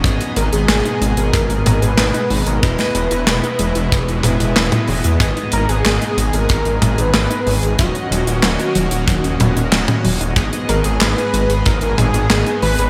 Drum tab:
HH |xxxxxxxxxxxxxxox|xxxxxxxxxxxxxxox|xxxxxxxxxxxxxxox|xxxxxxxxxxxxxxox|
CP |----x-------x---|----x-------x---|----x-------x---|----x-------x---|
SD |----o-------o---|-o--o-------o---|----o-------o---|----o-------o---|
T2 |----------o-----|----------o--o--|----------o-----|----------o--o--|
BD |o-------o-------|o-------o-------|o-------o-------|o-------o-------|

HH |xxxxxxxxxxxxxxox|
CP |----x-------x---|
SD |----o-------o---|
T2 |----------o-----|
BD |o-------o-------|